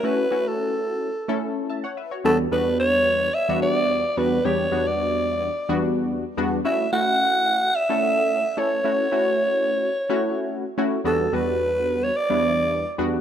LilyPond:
<<
  \new Staff \with { instrumentName = "Alto saxophone" } { \time 4/4 \key e \dorian \tempo 4 = 109 b'8. a'2 r4 r16 | a'8 b'8 cis''4 e''8 d''4 b'8 | cis''8. d''2 r4 r16 | e''8 fis''4. e''4. cis''8~ |
cis''2.~ cis''8 r8 | a'8 b'4~ b'16 cis''16 d''4. r8 | }
  \new Staff \with { instrumentName = "Analog polysynth" } { \time 4/4 \key e \dorian << { r2. <e'' a''>16 <cis'' fis''>16 <b' e''>16 <fis' cis''>16~ | <fis' cis''>16 r2. r8. | r1 | r1 |
r1 | r1 | } \\ { <a cis' e' fis'>8 <a cis' e' fis'>4. r16 <a cis' e' a'>4 r8. | <e, g b d' fis'>8 <e, g b d' fis'>4. r16 <e, g b d' fis'>4 r16 <e, g b d' fis'>8 | <e, g b d' g'>8 <e, g b d' fis'>4. r16 <e, g b d' fis'>4 r16 <e, g b d' fis'>8 | <a cis' e' fis'>8 <a cis' e' fis'>4. r16 <a cis' e' a'>4 r16 <a cis' e' a'>8 |
<a cis' e' fis'>8 <a cis' e' fis'>4. r16 <a cis' e' fis'>4 r16 <a cis' e' fis'>8 | <e, g b d' fis'>8 <e, g b d' fis'>4. r16 <e, g b d' e'>4 r16 <e, g b d' fis'>8 | } >> }
>>